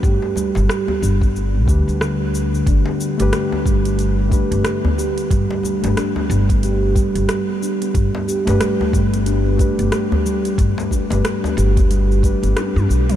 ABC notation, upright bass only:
X:1
M:4/4
L:1/16
Q:"Swing 16ths" 1/4=91
K:G
V:1 name="Upright bass" clef=bass
G,,, z2 G,,, z2 G,,,4 D,, D,,4 z | G,,, z2 G,,, z2 G,,,4 z G,,, z4 | G,,, z2 G,,, z2 G,,,4 z G,,, z4 | G,,, z2 G,,, z2 G,,,4 z G,,, z4 |
G,,, z2 G,,, z2 G,,,4 z G,,, z G,, B,,, z |]